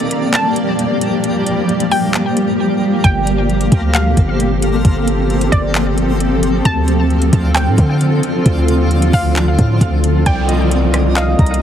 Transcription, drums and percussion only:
0.00 closed hi-hat medium
0.11 closed hi-hat medium
0.34 clap loud
0.34 closed hi-hat medium
0.56 closed hi-hat medium
0.79 closed hi-hat medium
1.01 closed hi-hat medium
1.24 closed hi-hat medium
1.47 closed hi-hat medium
1.69 closed hi-hat soft
1.80 closed hi-hat medium
1.91 open hi-hat medium
2.14 clap loud
2.14 closed hi-hat medium
2.37 closed hi-hat medium
3.04 kick loud
3.04 closed hi-hat medium
3.27 closed hi-hat medium
3.50 closed hi-hat soft
3.61 closed hi-hat medium
3.72 kick loud
3.72 closed hi-hat medium
3.95 clap loud
3.95 closed hi-hat medium
4.17 kick medium
4.17 closed hi-hat medium
4.40 closed hi-hat medium
4.62 closed hi-hat medium
4.85 kick loud
4.85 closed hi-hat medium
5.08 closed hi-hat medium
5.30 closed hi-hat soft
5.41 closed hi-hat medium
5.52 kick loud
5.52 closed hi-hat medium
5.75 clap loud
5.75 closed hi-hat medium
5.98 closed hi-hat medium
6.20 closed hi-hat medium
6.43 closed hi-hat medium
6.65 kick loud
6.65 closed hi-hat medium
6.88 closed hi-hat medium
7.10 closed hi-hat soft
7.22 closed hi-hat medium
7.33 kick loud
7.33 closed hi-hat medium
7.56 clap loud
7.56 closed hi-hat medium
7.78 kick loud
7.78 closed hi-hat medium
8.01 closed hi-hat medium
8.23 closed hi-hat medium
8.46 kick loud
8.46 closed hi-hat medium
8.68 closed hi-hat medium
8.91 closed hi-hat soft
9.02 closed hi-hat medium
9.13 kick loud
9.13 open hi-hat medium
9.36 clap loud
9.36 closed hi-hat medium
9.59 kick medium
9.59 closed hi-hat medium
9.81 kick medium
9.81 closed hi-hat medium
10.04 closed hi-hat medium
10.26 kick loud
10.26 closed hi-hat medium
10.49 closed hi-hat medium
10.71 closed hi-hat medium
10.94 cross-stick loud
10.94 closed hi-hat medium
11.16 clap loud
11.16 closed hi-hat medium
11.39 kick medium
11.39 closed hi-hat soft
11.46 closed hi-hat medium
11.54 closed hi-hat medium

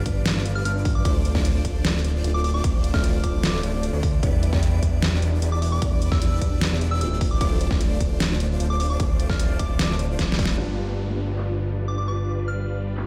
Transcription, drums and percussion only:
0.06 kick medium
0.06 closed hi-hat medium
0.26 snare loud
0.26 closed hi-hat medium
0.46 closed hi-hat medium
0.65 closed hi-hat medium
0.85 kick loud
0.85 open hi-hat loud
1.05 kick loud
1.05 closed hi-hat medium
1.25 closed hi-hat medium
1.35 kick loud
1.35 snare soft
1.45 closed hi-hat medium
1.65 kick medium
1.65 closed hi-hat medium
1.85 snare loud
1.85 closed hi-hat medium
2.04 closed hi-hat medium
2.24 closed hi-hat medium
2.44 open hi-hat medium
2.64 kick loud
2.64 closed hi-hat medium
2.84 closed hi-hat medium
2.94 kick loud
2.94 snare soft
3.04 closed hi-hat medium
3.24 kick medium
3.24 closed hi-hat medium
3.43 snare loud
3.43 closed hi-hat medium
3.63 closed hi-hat medium
3.83 closed hi-hat medium
4.03 kick loud
4.03 open hi-hat medium
4.23 kick loud
4.23 closed hi-hat medium
4.43 closed hi-hat medium
4.53 kick loud
4.53 snare soft
4.63 closed hi-hat medium
4.83 kick medium
4.83 closed hi-hat medium
5.02 snare loud
5.02 closed hi-hat medium
5.22 closed hi-hat medium
5.42 closed hi-hat medium
5.62 open hi-hat loud
5.82 kick loud
5.82 closed hi-hat medium
6.02 closed hi-hat medium
6.12 kick loud
6.12 snare soft
6.22 closed hi-hat medium
6.41 kick medium
6.41 closed hi-hat medium
6.61 snare loud
6.61 closed hi-hat medium
6.81 closed hi-hat medium
7.01 closed hi-hat medium
7.21 kick loud
7.21 open hi-hat loud
7.41 kick loud
7.41 closed hi-hat medium
7.61 closed hi-hat medium
7.71 kick loud
7.71 snare soft
7.81 closed hi-hat medium
8.00 kick medium
8.00 closed hi-hat medium
8.20 snare loud
8.20 closed hi-hat medium
8.40 closed hi-hat medium
8.60 closed hi-hat medium
8.80 open hi-hat loud
9.00 kick loud
9.00 closed hi-hat medium
9.20 closed hi-hat medium
9.30 kick loud
9.30 snare soft
9.39 closed hi-hat medium
9.59 kick medium
9.59 closed hi-hat medium
9.79 snare loud
9.79 closed hi-hat medium
9.99 closed hi-hat medium
10.19 kick medium
10.19 snare medium
10.19 closed hi-hat medium
10.32 snare medium
10.39 kick loud
10.39 open hi-hat loud
10.46 snare loud
11.38 clap medium
12.97 clap medium

